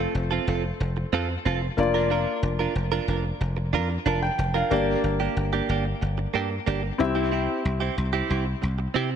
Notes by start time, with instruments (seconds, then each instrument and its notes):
Already playing: grand piano A3 C4 F4 C5
0.00 clean electric guitar C4 F4 A4
0.15 slap bass F1, muted clean electric guitar stroke
0.31 clean electric guitar C4 F4 A4
0.47 slap bass F1, clean electric guitar C4 F4 A4
0.64 muted clean electric guitar stroke
0.80 slap bass F1, muted clean electric guitar stroke
0.97 muted clean electric guitar stroke
1.13 slap bass F2, clean electric guitar C4 F4 A4
1.29 muted clean electric guitar stroke
1.45 slap bass F1, clean electric guitar C4 F4 A4
1.62 muted clean electric guitar stroke
1.77 slap bass F1, grand piano A#3 D4 F4 D5, muted clean electric guitar stroke
1.94 clean electric guitar D4 F4 A#4
2.10 clean electric guitar D4 F4 A#4
2.43 slap bass F1, muted clean electric guitar stroke
2.59 clean electric guitar D4 F4 A#4
2.75 slap bass F1, muted clean electric guitar stroke
2.92 clean electric guitar D4 F4 A#4
3.08 slap bass F1, clean electric guitar D4 F4 A#4
3.25 muted clean electric guitar stroke
3.41 slap bass F1, muted clean electric guitar stroke
3.57 muted clean electric guitar stroke
3.73 slap bass F2, clean electric guitar D4 F4 A#4
3.90 muted clean electric guitar stroke
4.06 slap bass F1, clean electric guitar D4 F4 A#4, grand piano A5
4.22 grand piano G5, muted clean electric guitar stroke
4.38 slap bass F1, muted clean electric guitar stroke
4.54 clean electric guitar D4 F4 A#4, grand piano F5
4.70 slap bass G1, grand piano A#3 D4 G4 D5, clean electric guitar A#3 D4 G4
5.04 slap bass G1, muted clean electric guitar stroke
5.20 clean electric guitar A#3 D4 G4
5.36 slap bass G1, muted clean electric guitar stroke
5.53 clean electric guitar A#3 D4 G4
5.69 slap bass G1, clean electric guitar A#3 D4 G4
5.85 muted clean electric guitar stroke
6.01 slap bass G1, muted clean electric guitar stroke
6.18 muted clean electric guitar stroke
6.34 slap bass G2, clean electric guitar A#3 D4 G4
6.50 muted clean electric guitar stroke
6.66 slap bass G1, clean electric guitar A#3 D4 G4
6.83 muted clean electric guitar stroke
6.98 slap bass C2, grand piano C4 E4 G4 E5, muted clean electric guitar stroke
7.15 clean electric guitar C4 E4 G4
7.31 clean electric guitar C4 E4 G4
7.64 slap bass C2, muted clean electric guitar stroke
7.80 clean electric guitar C4 E4 G4
7.97 slap bass C2, muted clean electric guitar stroke
8.13 clean electric guitar C4 E4 G4
8.29 slap bass C2, clean electric guitar C4 E4 G4
8.46 muted clean electric guitar stroke
8.62 slap bass C2, muted clean electric guitar stroke
8.79 muted clean electric guitar stroke
8.94 slap bass C3, clean electric guitar C4 E4 G4
9.11 muted clean electric guitar stroke